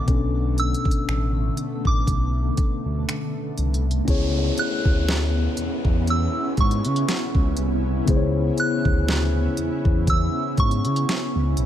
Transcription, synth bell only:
0.00 0.62 D6 loud
0.60 1.89 E6 medium
1.87 3.55 D6 medium
4.59 6.13 F#6 loud
6.10 6.61 E6 loud
6.61 7.55 C#6 medium
8.60 10.13 F#6 loud
10.10 10.60 E6 loud
10.60 11.55 C#6 medium

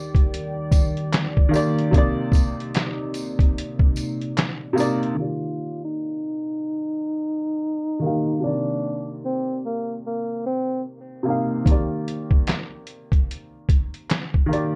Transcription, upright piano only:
0.00 0.21 D#3 medium
0.00 0.22 A#3 medium
0.00 0.24 G4 medium
0.00 0.25 D5 medium
1.49 1.89 D#3 medium
1.49 1.90 A#3 medium
1.53 1.91 G4 medium
1.53 1.93 D5 loud
1.91 3.45 C3 medium
1.91 3.46 A#3 medium
1.96 3.48 D#4 medium
1.96 3.49 D5 loud
4.73 5.13 C3 medium
4.73 5.14 A#3 medium
4.78 5.16 D#4 medium
4.78 5.17 D5 medium
5.15 6.69 D#3 medium
5.15 6.71 A#3 medium
5.19 6.72 G4 medium
5.19 6.73 D5 medium
7.99 8.39 D#3 medium
7.99 8.40 A#3 medium
8.04 8.41 G4 medium
8.04 8.42 F5 medium
8.40 9.94 C3 medium
8.40 9.95 A#3 medium
8.44 9.96 D#3 medium
8.44 9.97 D5 medium
11.23 11.63 C3 medium
11.23 11.64 A#3 medium
11.28 11.65 D#4 medium
11.28 11.66 F5 medium
11.65 13.19 D#3 medium
11.65 13.20 A#3 medium
11.69 13.21 G4 medium
11.69 13.22 D5 medium
14.46 14.76 D#3 medium
14.46 14.76 A#3 medium
14.51 14.76 G4 medium
14.51 14.76 D5 medium

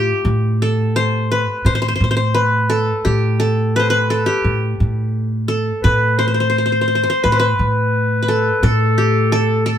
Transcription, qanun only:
0.00 0.57 F4 medium
0.00 1.18 G4 medium
0.62 1.79 A4 medium
0.96 1.38 C5 medium
1.31 1.72 B4 medium
1.66 1.75 C5 medium
1.75 1.81 C5 medium
1.82 1.88 C5 medium
1.88 1.95 C5 medium
1.96 2.03 C5 medium
2.04 2.10 C5 medium
2.11 2.16 C5 medium
2.17 2.40 C5 medium
2.34 3.44 B4 medium
2.70 3.39 A4 medium
3.05 4.26 G4 medium
3.40 4.10 A4 medium
3.76 3.86 B4 medium
3.76 3.96 C5 medium
3.90 4.99 B4 medium
4.10 5.27 A4 medium
4.26 5.52 G4 medium
5.48 6.65 A4 medium
5.84 6.25 B4 medium
6.19 6.27 C5 medium
6.28 6.34 C5 medium
6.34 6.40 C5 medium
6.40 6.49 C5 medium
6.50 6.58 C5 medium
6.58 6.65 C5 medium
6.66 6.72 C5 medium
6.72 6.81 C5 soft
6.81 6.87 C5 medium
6.88 6.95 C5 soft
6.95 7.03 C5 medium
7.03 7.09 C5 medium
7.10 7.30 C5 medium
7.24 7.38 B4 medium
7.32 7.46 C5 medium
7.40 8.22 B4 medium
8.22 9.32 B4 medium
8.28 8.63 A4 medium
8.63 9.32 A4 medium
8.98 9.78 G4 medium
9.32 9.65 A4 medium
9.66 9.78 A4 medium

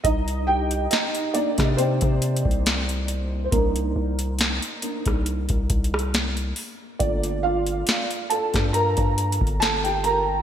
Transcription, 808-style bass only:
0.05 0.88 C2 loud
1.58 2.00 C3 loud
2.02 2.44 C3 loud
2.45 3.48 C2 loud
3.52 3.94 C2 loud
3.96 4.60 C2 loud
5.06 5.48 C2 loud
5.50 5.69 C2 loud
5.70 6.53 C2 loud
7.00 7.84 G1 loud
8.54 8.96 G2 loud
8.98 9.39 G2 loud
9.41 10.42 G1 loud

